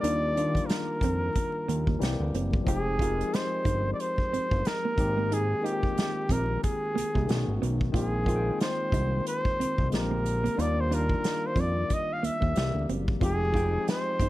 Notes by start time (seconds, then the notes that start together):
0.01 D#2 D#3 G3 A#3 D4 D5, closed hi-hat
0.05 F4
0.35 D#3 G3 A#3 D4, closed hi-hat
0.39 F4
0.55 kick, closed hi-hat
0.66 A#4, closed hi-hat
0.70 snare
1.01 F2 C4, kick, closed hi-hat
1.35 muted hollow-body jazz guitar stroke, kick, closed hi-hat
1.68 D#2 A#3, closed hi-hat
1.87 A#3, kick
1.99 C2 E3 G3 A#3 C4, closed hi-hat
2.03 G4, snare
2.20 D2
2.34 F#1 C4, closed hi-hat
2.53 kick
2.64 F1 F3 G#3 C4 D#4, kick, closed hi-hat
2.68 F4 G4 G#4
2.99 F3 G#3 C4 D#4 F4, kick, closed hi-hat
3.03 A#4
3.21 closed hi-hat
3.34 C5, snare, closed hi-hat
3.65 G1 D#4, kick, closed hi-hat
3.94 D5
4.00 C5, closed hi-hat
4.18 kick
4.33 G1 C4, closed hi-hat
4.51 G1, kick
4.65 A#4, snare, closed hi-hat
4.85 A#3
4.96 G#1 D#3 G#3 A#3 C4, muted hollow-body jazz guitar stroke, kick, closed hi-hat
5.00 G4
5.18 A#3
5.32 D#4 G#4, closed hi-hat
5.62 D#3 G#3 A#3 C4 D#4 G4, closed hi-hat
5.67 F4
5.73 G4
5.83 kick
5.98 snare, closed hi-hat
6.29 A#1 C4 A#4, kick, closed hi-hat
6.63 G#4, muted hollow-body jazz guitar stroke, kick, closed hi-hat
6.95 C2 A#3, closed hi-hat
7.15 C2 A#3, kick
7.26 B1 D#3 A3 B3 C#4, closed hi-hat
7.30 F#4, snare
7.48 G#1
7.62 B1 B3, closed hi-hat
7.81 kick
7.92 A#1 D#3 G#3 A#3 C4 F4 G#4, kick, closed hi-hat
7.96 F4
8.25 D#3 G#3 A#3 C4 F4, kick, closed hi-hat
8.36 G5
8.60 C5, snare, closed hi-hat
8.92 C2 D#4, kick, closed hi-hat
9.27 C5, closed hi-hat
9.45 kick
9.60 C2 C4, closed hi-hat
9.78 C2, kick
9.90 A#1 D3 G#3 A#3 C4, closed hi-hat
9.94 G4 A#4, snare
10.11 A#3
10.25 muted hollow-body jazz guitar stroke, closed hi-hat
10.44 A#3, closed hi-hat
10.56 D#2 D#3 G3 A#3 D4, closed hi-hat
10.60 F4 D5
10.80 C5
10.89 D#3 G3 A#3 D4 F4, closed hi-hat
10.94 A#4
11.09 kick
11.24 snare, closed hi-hat
11.46 C5
11.56 F2 C4, kick, closed hi-hat
11.60 D5
11.90 D#5, muted hollow-body jazz guitar stroke, kick, closed hi-hat
12.13 F5
12.23 D#2 A#3 E5, closed hi-hat
12.40 D#2 A#3, kick
12.54 C2 E3 G3 A#3 C4 G4, snare, closed hi-hat
12.75 D2
12.89 F#1 C4, closed hi-hat
13.08 kick
13.20 F1 F3 G#3 C4 D#4 F4 G4, kick, closed hi-hat
13.25 G#4
13.52 F3 G#3 C4 D#4 F4, kick
13.56 G5, closed hi-hat
13.88 C5, snare, closed hi-hat
14.20 G1 D#4, kick, closed hi-hat